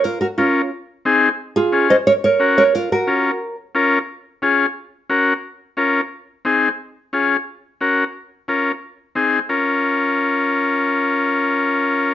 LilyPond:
<<
  \new Staff \with { instrumentName = "Nylon-string guitar" } { \time 4/4 \key bes \minor \tempo 4 = 178 << { bes'8 bes'8 f'4 r2 | r8 aes'4 ees''8 des''8 des''4 des''8 | bes'8 bes'2 r4. | r1 |
r1 | r1 | r1 | r1 |
r1 | } \\ { f'8 ges'8 des'4 r2 | r8 f'4 c''8 bes'8 bes'4 bes'8 | f'8 ges'4. r2 | r1 |
r1 | r1 | r1 | r1 |
r1 | } >> }
  \new Staff \with { instrumentName = "Transistor combo organ" } { \time 4/4 \key bes \minor r4 <des' f' bes'>8 r4. <c' ees' aes'>8 r8 | r4 <des' f' aes'>8 r4. <des' ges' bes'>8 r8 | r4 <des' f' bes'>8 r4. <des' f' bes'>8 r8 | r4 <des' f' aes'>8 r4. <des' ges' bes'>8 r8 |
r4 <des' f' bes'>8 r4. <c' ees' aes'>8 r8 | r4 <des' f' aes'>8 r4. <des' ges' bes'>8 r8 | r4 <des' f' bes'>8 r4. <c' ees' aes'>8 r8 | <des' f' bes'>1~ |
<des' f' bes'>1 | }
>>